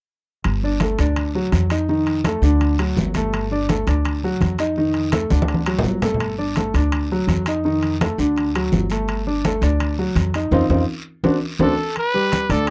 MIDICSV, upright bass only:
0, 0, Header, 1, 2, 480
1, 0, Start_track
1, 0, Key_signature, 1, "major"
1, 0, Tempo, 359712
1, 599, Time_signature, 4, 2, 24, 8
1, 16948, End_track
2, 0, Start_track
2, 0, Title_t, "Upright bass"
2, 0, Program_c, 0, 32
2, 600, Note_on_c, 0, 31, 84
2, 1270, Note_off_c, 0, 31, 0
2, 1317, Note_on_c, 0, 38, 89
2, 1989, Note_off_c, 0, 38, 0
2, 2031, Note_on_c, 0, 41, 80
2, 3160, Note_off_c, 0, 41, 0
2, 3226, Note_on_c, 0, 38, 89
2, 3904, Note_off_c, 0, 38, 0
2, 3958, Note_on_c, 0, 31, 88
2, 5083, Note_off_c, 0, 31, 0
2, 5161, Note_on_c, 0, 38, 84
2, 5832, Note_off_c, 0, 38, 0
2, 5889, Note_on_c, 0, 41, 79
2, 7009, Note_off_c, 0, 41, 0
2, 7088, Note_on_c, 0, 38, 89
2, 7756, Note_off_c, 0, 38, 0
2, 7789, Note_on_c, 0, 31, 77
2, 8919, Note_off_c, 0, 31, 0
2, 8993, Note_on_c, 0, 38, 88
2, 9668, Note_off_c, 0, 38, 0
2, 9706, Note_on_c, 0, 41, 87
2, 10838, Note_off_c, 0, 41, 0
2, 10919, Note_on_c, 0, 38, 90
2, 11591, Note_off_c, 0, 38, 0
2, 11638, Note_on_c, 0, 31, 79
2, 12763, Note_off_c, 0, 31, 0
2, 12830, Note_on_c, 0, 38, 88
2, 13506, Note_off_c, 0, 38, 0
2, 13550, Note_on_c, 0, 41, 92
2, 14003, Note_off_c, 0, 41, 0
2, 14027, Note_on_c, 0, 41, 85
2, 14213, Note_off_c, 0, 41, 0
2, 14271, Note_on_c, 0, 41, 97
2, 14455, Note_off_c, 0, 41, 0
2, 14992, Note_on_c, 0, 38, 87
2, 15175, Note_off_c, 0, 38, 0
2, 15470, Note_on_c, 0, 38, 94
2, 15654, Note_off_c, 0, 38, 0
2, 16673, Note_on_c, 0, 38, 96
2, 16948, Note_off_c, 0, 38, 0
2, 16948, End_track
0, 0, End_of_file